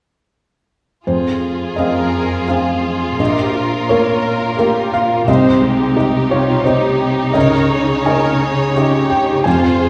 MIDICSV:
0, 0, Header, 1, 5, 480
1, 0, Start_track
1, 0, Key_signature, -4, "minor"
1, 0, Tempo, 708383
1, 726, Time_signature, 3, 2, 24, 8
1, 2641, Tempo, 693642
1, 6790, End_track
2, 0, Start_track
2, 0, Title_t, "Felt piano"
2, 0, Program_c, 0, 0
2, 726, Note_on_c, 0, 41, 33
2, 726, Note_on_c, 0, 72, 45
2, 848, Control_c, 0, 64, 127
2, 1179, Note_off_c, 0, 72, 0
2, 1192, Note_off_c, 0, 41, 0
2, 1195, Note_on_c, 0, 75, 46
2, 1209, Note_on_c, 0, 60, 27
2, 1211, Note_on_c, 0, 68, 27
2, 1216, Note_on_c, 0, 77, 29
2, 1653, Note_off_c, 0, 75, 0
2, 1660, Note_off_c, 0, 60, 0
2, 1662, Note_off_c, 0, 68, 0
2, 1664, Note_off_c, 0, 77, 0
2, 1683, Note_on_c, 0, 77, 39
2, 1690, Note_on_c, 0, 60, 28
2, 1692, Note_on_c, 0, 68, 31
2, 2137, Note_off_c, 0, 77, 0
2, 2140, Note_off_c, 0, 60, 0
2, 2141, Note_off_c, 0, 68, 0
2, 2163, Note_on_c, 0, 34, 34
2, 2167, Note_on_c, 0, 75, 47
2, 2178, Control_c, 0, 64, 0
2, 2269, Control_c, 0, 64, 127
2, 2617, Note_off_c, 0, 75, 0
2, 2628, Note_off_c, 0, 34, 0
2, 2638, Note_on_c, 0, 73, 47
2, 2645, Note_on_c, 0, 58, 29
2, 2646, Note_on_c, 0, 70, 25
2, 2648, Note_on_c, 0, 77, 29
2, 3095, Note_off_c, 0, 58, 0
2, 3095, Note_off_c, 0, 70, 0
2, 3096, Note_off_c, 0, 77, 0
2, 3121, Note_on_c, 0, 58, 31
2, 3122, Note_on_c, 0, 70, 31
2, 3126, Note_on_c, 0, 77, 33
2, 3329, Note_off_c, 0, 73, 0
2, 3349, Note_off_c, 0, 77, 0
2, 3360, Note_on_c, 0, 77, 57
2, 3568, Note_off_c, 0, 58, 0
2, 3568, Note_off_c, 0, 70, 0
2, 3579, Note_off_c, 0, 77, 0
2, 3593, Note_on_c, 0, 36, 36
2, 3598, Note_on_c, 0, 75, 51
2, 3609, Control_c, 0, 64, 0
2, 3729, Control_c, 0, 64, 127
2, 4055, Note_off_c, 0, 36, 0
2, 4063, Note_off_c, 0, 75, 0
2, 4070, Note_on_c, 0, 67, 30
2, 4071, Note_on_c, 0, 63, 33
2, 4074, Note_on_c, 0, 75, 34
2, 4312, Note_on_c, 0, 73, 58
2, 4524, Note_off_c, 0, 63, 0
2, 4524, Note_off_c, 0, 67, 0
2, 4525, Note_off_c, 0, 75, 0
2, 4535, Note_off_c, 0, 73, 0
2, 4542, Note_on_c, 0, 72, 47
2, 4551, Note_on_c, 0, 63, 35
2, 4555, Note_on_c, 0, 67, 33
2, 4558, Note_on_c, 0, 75, 36
2, 4998, Note_off_c, 0, 72, 0
2, 5002, Note_off_c, 0, 63, 0
2, 5004, Note_off_c, 0, 67, 0
2, 5006, Note_off_c, 0, 75, 0
2, 5020, Note_on_c, 0, 75, 60
2, 5026, Note_on_c, 0, 37, 41
2, 5044, Control_c, 0, 64, 0
2, 5146, Control_c, 0, 64, 127
2, 5494, Note_off_c, 0, 75, 0
2, 5510, Note_off_c, 0, 37, 0
2, 5521, Note_on_c, 0, 80, 54
2, 5523, Note_on_c, 0, 61, 33
2, 5524, Note_on_c, 0, 63, 36
2, 5527, Note_on_c, 0, 75, 35
2, 5981, Note_off_c, 0, 80, 0
2, 5982, Note_off_c, 0, 61, 0
2, 5982, Note_off_c, 0, 63, 0
2, 5984, Note_off_c, 0, 75, 0
2, 6010, Note_on_c, 0, 61, 35
2, 6015, Note_on_c, 0, 63, 34
2, 6019, Note_on_c, 0, 75, 40
2, 6241, Note_on_c, 0, 79, 58
2, 6461, Note_off_c, 0, 61, 0
2, 6463, Note_off_c, 0, 63, 0
2, 6465, Note_off_c, 0, 75, 0
2, 6467, Note_off_c, 0, 79, 0
2, 6476, Note_on_c, 0, 80, 54
2, 6488, Note_on_c, 0, 41, 41
2, 6501, Control_c, 0, 64, 0
2, 6602, Control_c, 0, 64, 127
2, 6790, Note_off_c, 0, 41, 0
2, 6790, Note_off_c, 0, 80, 0
2, 6790, End_track
3, 0, Start_track
3, 0, Title_t, "Violin section"
3, 0, Program_c, 1, 48
3, 727, Note_on_c, 1, 65, 33
3, 727, Note_on_c, 1, 68, 37
3, 2139, Note_off_c, 1, 68, 0
3, 2172, Note_on_c, 1, 70, 38
3, 3568, Note_off_c, 1, 65, 0
3, 3571, Note_off_c, 1, 70, 0
3, 3596, Note_on_c, 1, 67, 38
3, 3597, Note_on_c, 1, 63, 46
3, 5003, Note_off_c, 1, 67, 0
3, 5033, Note_on_c, 1, 73, 46
3, 6462, Note_off_c, 1, 73, 0
3, 6483, Note_on_c, 1, 65, 46
3, 6488, Note_on_c, 1, 72, 45
3, 6489, Note_off_c, 1, 63, 0
3, 6790, Note_off_c, 1, 65, 0
3, 6790, Note_off_c, 1, 72, 0
3, 6790, End_track
4, 0, Start_track
4, 0, Title_t, "Viola section"
4, 0, Program_c, 2, 48
4, 1210, Note_on_c, 2, 70, 44
4, 1661, Note_off_c, 2, 70, 0
4, 1687, Note_on_c, 2, 68, 35
4, 2164, Note_on_c, 2, 67, 45
4, 2165, Note_off_c, 2, 68, 0
4, 2405, Note_off_c, 2, 67, 0
4, 2405, Note_on_c, 2, 65, 41
4, 2643, Note_off_c, 2, 65, 0
4, 2644, Note_on_c, 2, 70, 50
4, 3120, Note_on_c, 2, 67, 41
4, 3122, Note_off_c, 2, 70, 0
4, 3358, Note_off_c, 2, 67, 0
4, 3362, Note_on_c, 2, 65, 35
4, 3597, Note_off_c, 2, 65, 0
4, 3598, Note_on_c, 2, 72, 49
4, 3828, Note_on_c, 2, 56, 46
4, 3829, Note_off_c, 2, 72, 0
4, 4068, Note_off_c, 2, 56, 0
4, 4075, Note_on_c, 2, 67, 40
4, 4313, Note_off_c, 2, 67, 0
4, 4316, Note_on_c, 2, 65, 44
4, 4554, Note_off_c, 2, 65, 0
4, 4557, Note_on_c, 2, 67, 48
4, 5029, Note_on_c, 2, 70, 56
4, 5033, Note_off_c, 2, 67, 0
4, 5277, Note_off_c, 2, 70, 0
4, 5279, Note_on_c, 2, 68, 46
4, 5527, Note_on_c, 2, 70, 53
4, 5529, Note_off_c, 2, 68, 0
4, 5766, Note_off_c, 2, 70, 0
4, 5774, Note_on_c, 2, 68, 50
4, 6013, Note_off_c, 2, 68, 0
4, 6013, Note_on_c, 2, 67, 53
4, 6489, Note_off_c, 2, 67, 0
4, 6494, Note_on_c, 2, 65, 50
4, 6724, Note_off_c, 2, 65, 0
4, 6732, Note_on_c, 2, 68, 51
4, 6790, Note_off_c, 2, 68, 0
4, 6790, End_track
5, 0, Start_track
5, 0, Title_t, "Cello section"
5, 0, Program_c, 3, 48
5, 729, Note_on_c, 3, 41, 41
5, 2139, Note_off_c, 3, 41, 0
5, 2164, Note_on_c, 3, 46, 44
5, 3568, Note_off_c, 3, 46, 0
5, 3599, Note_on_c, 3, 48, 47
5, 5004, Note_off_c, 3, 48, 0
5, 5028, Note_on_c, 3, 49, 50
5, 6482, Note_on_c, 3, 41, 50
5, 6488, Note_off_c, 3, 49, 0
5, 6790, Note_off_c, 3, 41, 0
5, 6790, End_track
0, 0, End_of_file